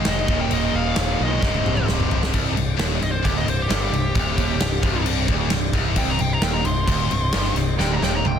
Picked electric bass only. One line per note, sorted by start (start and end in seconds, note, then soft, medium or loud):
0.06 0.24 F1 medium
0.28 0.46 D#1 loud
0.51 0.69 D#1 loud
0.73 0.92 D#1 loud
0.96 1.15 D#1 medium
1.20 1.38 B1 medium
1.66 1.83 C1 medium
1.89 2.06 C1 medium
2.11 2.29 C1 medium
2.34 2.55 C1 medium
2.57 2.77 C1 medium
2.79 3.00 D#1 medium
3.02 3.23 C1 medium
3.25 3.46 D1 medium
3.48 3.69 C1 medium
3.70 3.91 G1 loud
3.93 4.14 C1 medium
4.15 4.36 D1 loud
4.38 4.59 D#1 medium
4.60 4.82 C1 medium
4.83 5.26 C1 medium
5.28 5.50 D1 loud
5.51 5.73 C1 medium
5.73 5.95 C1 loud
5.97 6.18 C1 medium
6.19 6.41 C1 medium
6.42 6.63 D#1 loud
6.64 6.86 C1 medium
6.88 7.09 D1 loud
7.10 7.32 C1 medium
7.34 7.54 G1 loud
7.55 7.77 C1 medium
7.79 8.00 D1 loud
8.01 8.23 D#1 medium
8.23 8.39 C1 medium